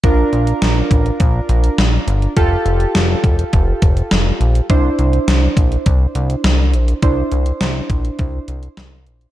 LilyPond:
<<
  \new Staff \with { instrumentName = "Synth keys" } { \time 4/4 \key bes \lydian \tempo 4 = 103 <d' f' bes'>1 | <f' g' a'>1 | <d' e' c''>1 | <d' e' c''>1 | }
  \new Staff \with { instrumentName = "Analog synth bass" } { \clef bass \time 4/4 \key bes \lydian bes,,8 bes,,8 bes,,8 a,,8 bes,,8 bes,,8 bes,,8 g,,8 | f,,8 f,,8 f,,8 e,,8 f,,8 f,,8 f,,8 bes,,8 | c,8 c,8 c,8 bes,,8 c,8 c,8 c,8 bes,,8 | c,8 c,8 c,8 bes,,8 c,8 c,8 c,8 bes,,8 | }
  \new DrumStaff \with { instrumentName = "Drums" } \drummode { \time 4/4 <hh bd>8 hh16 hh16 <hh sn>8 <hh bd>16 hh16 <hh bd>8 hh16 hh16 <hh sn>8 hh16 hh16 | <hh bd>8 hh16 hh16 <hh sn>8 <hh bd>16 hh16 <hh bd>8 <hh bd>16 hh16 <hh sn>8 hh16 hh16 | <hh bd>8 hh16 hh16 <hh sn>8 <hh bd>16 hh16 <hh bd>8 hh16 hh16 <hh sn>8 hh16 hh16 | <hh bd>8 hh16 hh16 <hh sn>8 <hh bd>16 hh16 <hh bd>8 hh16 hh16 <hh sn>8 hh16 hh16 | }
>>